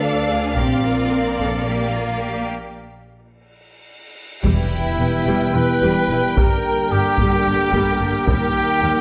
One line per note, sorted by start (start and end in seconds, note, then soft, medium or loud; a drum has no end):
0.00 0.52 D2 soft
0.00 0.57 D4 medium
0.00 0.53 A4 soft
0.00 0.29 A4 soft
0.00 0.51 D5 soft
0.00 0.52 D5 medium
0.00 2.44 F5 medium
0.00 2.47 F5 soft
0.29 0.56 G#4 soft
0.55 2.48 A#1 soft
0.55 1.66 C4 medium
0.55 0.82 G4 soft
0.55 2.48 A#4 soft
0.55 2.44 D5 soft
0.55 2.45 D5 soft
0.55 taiko soft
0.84 1.11 F4 soft
1.11 1.38 A#4 soft
1.38 1.66 A4 soft
1.38 taiko soft
1.66 2.47 A#3 medium
1.66 1.93 G4 soft
1.93 2.20 F4 soft
2.21 2.48 G4 soft
2.48 cymbal swell soft
4.43 4.52 E1 soft
4.43 5.23 E2 medium
4.43 4.52 E2 soft
4.43 6.33 E3 medium
4.43 4.69 G3 medium
4.43 8.24 G3 medium
4.43 6.33 B3 soft
4.43 5.57 E4 medium
4.43 5.51 E4 soft
4.43 8.24 G4 soft
4.43 6.33 B4 soft
4.43 8.24 G5 soft
4.43 taiko medium
4.43 impact soft
4.98 5.06 E1 soft
4.98 5.06 E2 soft
4.98 5.08 B3 soft
5.26 5.35 E1 soft
5.26 5.34 E2 medium
5.26 5.53 G3 medium
5.55 5.64 E1 soft
5.55 5.63 E2 soft
5.55 5.63 E4 soft
5.55 6.37 B4 medium
5.55 6.39 B4 medium
5.82 5.91 E1 medium
5.82 5.91 E2 medium
5.82 6.08 G3 medium
6.10 6.18 E1 soft
6.10 6.18 E2 soft
6.10 6.18 E4 soft
6.36 6.46 G1 soft
6.36 6.45 G2 medium
6.36 8.24 D3 medium
6.36 6.63 G3 soft
6.36 9.01 A#3 soft
6.36 9.01 A#4 medium
6.36 6.93 A#4 medium
6.36 6.91 A#4 soft
6.36 taiko medium
6.91 6.99 G1 soft
6.91 6.99 G2 soft
6.91 7.00 A#3 soft
6.91 8.27 G4 medium
7.18 7.27 G1 medium
7.18 7.27 G2 medium
7.18 7.45 G3 soft
7.18 taiko medium
7.46 7.54 G1 soft
7.46 7.54 G2 soft
7.46 7.55 D4 soft
7.73 7.81 G1 medium
7.73 7.81 G2 medium
7.73 7.98 G3 medium
7.73 taiko medium
8.00 8.08 G1 soft
8.00 8.08 G2 soft
8.00 8.08 D4 soft
8.26 8.35 D#2 medium
8.26 8.36 D#2 medium
8.26 9.01 D#3 medium
8.26 9.01 G3 medium
8.26 8.53 G3 medium
8.26 9.01 G4 medium
8.26 9.01 A#4 medium
8.26 9.01 G5 medium
8.26 taiko medium
8.82 8.90 D#2 soft
8.82 8.90 A#3 soft